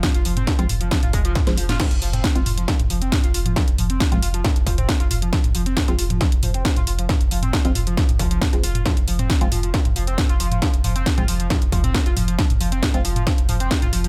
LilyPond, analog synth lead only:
\new Staff \with { instrumentName = "Analog synth lead" } { \clef bass \time 4/4 \key f \minor \tempo 4 = 136 f16 f'16 f16 c'16 r16 f'16 r16 f16 f16 f'16 aes16 f16 r8 f16 f'16 | f16 r16 f16 c'16 r16 f'16 f'16 f16 f16 r16 f16 c'16 r16 f'16 f'16 f16 | f16 r16 f16 c'16 r16 f'16 f'16 f16 f16 r16 f16 c'16 r16 f'16 f'16 f16 | f16 r16 f16 c'16 r16 f'16 f'16 f16 f16 r16 f16 c'16 r16 f'16 f'16 f16 |
f16 r16 f16 c'16 r16 f'16 f'16 f16 f16 r16 f16 f16 r8 f'16 f'16 | f16 r16 f16 c'16 r16 f'16 f16 f16 f16 r16 f16 c'16 r16 f'16 f16 f16 | f16 r16 f16 c'16 r16 f'16 f16 f16 f16 r16 f16 c'16 r16 f'16 f16 f16 | f16 r16 f16 c'16 r16 f'16 f16 f16 f16 r16 f16 c'16 r16 f'16 f16 f16 | }